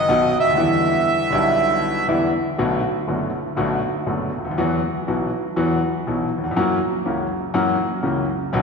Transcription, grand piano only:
0.08 0.30 B1 medium
0.08 0.30 B2 medium
0.08 0.30 D#3 medium
0.08 0.30 F#3 medium
0.08 0.30 B3 medium
0.08 0.30 F#4 medium
0.40 0.46 C#2 soft
0.47 0.53 D2 medium
0.51 0.58 D#2 medium
0.51 1.27 D3 medium
0.56 1.28 E2 medium
0.56 1.28 E3 medium
0.56 1.28 G3 medium
0.56 1.29 B3 medium
0.56 1.30 E4 medium
1.30 2.04 B1 medium
1.30 2.04 B2 medium
1.30 2.03 D3 medium
1.30 2.04 G3 medium
1.30 2.05 B3 medium
1.34 2.05 E4 medium
2.08 2.29 E2 medium
2.08 2.29 D3 medium
2.08 2.29 E3 medium
2.08 2.29 G3 medium
2.08 2.29 B3 medium
2.08 2.30 E4 medium
2.58 2.80 B1 medium
2.58 2.80 B2 medium
2.58 2.80 D3 medium
2.58 2.79 A3 medium
2.58 2.80 B3 medium
2.58 2.80 F#4 medium
3.07 3.29 F#1 medium
3.07 3.29 F#2 medium
3.07 3.29 D3 soft
3.07 3.29 A3 soft
3.07 3.29 B3 soft
3.07 3.29 F#4 medium
3.56 3.79 B1 medium
3.56 3.79 B2 medium
3.56 3.78 D3 medium
3.56 3.78 A3 medium
3.56 3.79 B3 medium
3.56 3.79 F#4 medium
4.06 4.28 F#1 medium
4.06 4.28 F#2 medium
4.06 4.28 D3 soft
4.06 4.28 A3 soft
4.06 4.29 B3 soft
4.06 4.28 F#4 soft
4.38 4.45 C#2 soft
4.45 4.51 D2 medium
4.51 4.58 D#2 medium
4.58 4.79 E2 medium
4.58 4.79 E3 medium
4.58 4.79 F#3 medium
4.58 4.79 B3 medium
4.58 4.79 F#4 medium
5.08 5.28 B1 medium
5.08 5.28 B2 medium
5.08 5.28 E3 medium
5.08 5.29 F#3 soft
5.08 5.29 B3 soft
5.08 5.29 F#4 medium
5.56 5.78 E2 medium
5.56 5.78 E3 medium
5.56 5.77 F#3 medium
5.56 5.78 B3 medium
5.56 5.78 F#4 medium
6.07 6.28 B1 medium
6.07 6.28 B2 medium
6.07 6.27 E3 medium
6.07 6.27 F#3 soft
6.07 6.28 B3 soft
6.07 6.28 F#4 medium
6.38 6.44 D#2 medium
6.44 6.50 E2 medium
6.51 6.57 F2 medium
6.56 6.77 F#2 medium
6.56 6.77 E3 medium
6.56 6.77 F#3 medium
6.56 6.77 A#3 medium
6.56 6.77 C#4 medium
6.56 6.77 F#4 medium
7.05 7.26 C#2 medium
7.05 7.26 C#3 medium
7.05 7.26 E3 medium
7.05 7.26 A#3 soft
7.05 7.26 C#4 soft
7.05 7.26 F#4 medium
7.54 7.75 F#2 medium
7.54 7.75 E3 medium
7.54 7.75 F#3 medium
7.54 7.75 A#3 medium
7.54 7.75 C#4 medium
7.54 7.75 F#4 medium
8.03 8.24 C#2 medium
8.03 8.24 C#3 medium
8.03 8.24 E3 soft
8.03 8.24 A#3 soft
8.03 8.24 C#4 soft
8.03 8.24 F#4 medium
8.53 8.62 B1 medium
8.53 8.62 B2 medium
8.53 8.62 D#3 medium
8.53 8.62 F#3 medium
8.53 8.62 B3 medium
8.53 8.62 F#4 medium

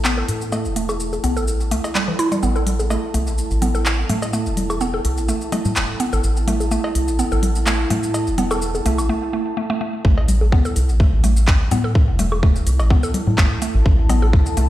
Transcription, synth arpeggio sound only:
0.05 0.13 B3 medium
0.18 0.24 A4 medium
0.52 0.60 A3 medium
0.76 0.81 A3 medium
1.24 1.32 B3 medium
1.37 1.43 A4 medium
1.71 1.77 A3 loud
1.95 1.98 G3 loud
2.08 2.12 E3 medium
2.19 2.27 E4 loud
2.32 2.36 G3 loud
2.43 2.51 B3 medium
2.56 2.62 A4 medium
2.90 2.98 A3 medium
3.14 3.19 A3 medium
3.62 3.70 B3 medium
3.75 3.81 A4 medium
4.09 4.17 A3 medium
4.33 4.39 A3 medium
4.81 4.89 B3 medium
4.94 5.00 A4 medium
5.29 5.36 A3 medium
5.52 5.58 A3 medium
6.00 6.08 B3 medium
6.13 6.20 A4 medium
6.48 6.55 A3 medium
6.71 6.77 A3 medium
7.19 7.27 B3 medium
7.32 7.39 A4 medium
7.67 7.74 A3 medium
7.90 7.96 A3 medium
8.38 8.46 B3 medium
8.51 8.58 A4 medium
8.86 8.94 A3 medium
9.09 9.15 A3 medium
9.33 9.39 A3 medium
9.57 9.62 A3 medium
9.70 9.73 A3 loud
9.81 9.86 A3 medium
10.05 10.10 A3 medium
10.52 10.60 B3 medium
10.65 10.72 A4 medium
11.00 11.08 A3 medium
11.24 11.29 A3 medium
11.71 11.79 B3 medium
11.84 11.91 A4 medium
12.19 12.27 A3 medium
12.43 12.48 A3 medium
12.90 12.98 B3 medium
13.03 13.10 A4 medium
13.38 13.46 A3 medium
13.62 13.67 A3 medium
14.10 14.17 B3 medium
14.22 14.29 A4 medium
14.57 14.65 A3 medium

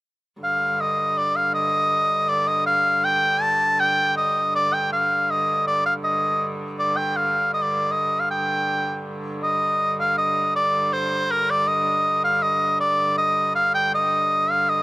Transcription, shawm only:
0.43 0.82 F5 medium
0.80 1.19 D#5 medium
1.17 1.37 D5 medium
1.36 1.53 F5 medium
1.54 2.30 D#5 medium
2.29 2.49 D5 medium
2.47 2.66 D#5 medium
2.66 3.06 F5 medium
3.04 3.43 G5 medium
3.42 3.81 A5 loud
3.80 4.16 G5 medium
4.16 4.51 D#5 medium
4.55 4.75 D5 medium
4.73 4.92 G5 medium
4.93 5.32 F5 medium
5.30 5.66 D#5 medium
5.67 5.84 D5 medium
5.86 5.94 F5 medium
6.04 6.48 D#5 medium
6.79 6.98 D5 medium
6.97 7.17 G5 medium
7.16 7.53 F5 medium
7.54 7.63 D#5 medium
7.62 7.93 D5 medium
7.91 8.21 D#5 medium
8.19 8.29 F5 medium
8.30 9.00 G5 medium
9.43 9.94 D#5 medium
10.00 10.16 F5 medium
10.18 10.52 D#5 medium
10.56 10.94 D5 medium
10.93 11.32 C5 medium
11.31 11.52 A#4 medium
11.50 11.69 D5 medium
11.67 12.23 D#5 medium
12.24 12.44 F5 medium
12.42 12.79 D#5 medium
12.80 13.14 D5 medium
13.18 13.52 D#5 medium
13.55 13.72 F5 medium
13.74 13.91 G5 medium
13.94 14.51 D#5 medium
14.50 14.71 F5 medium
14.69 14.83 D#5 medium

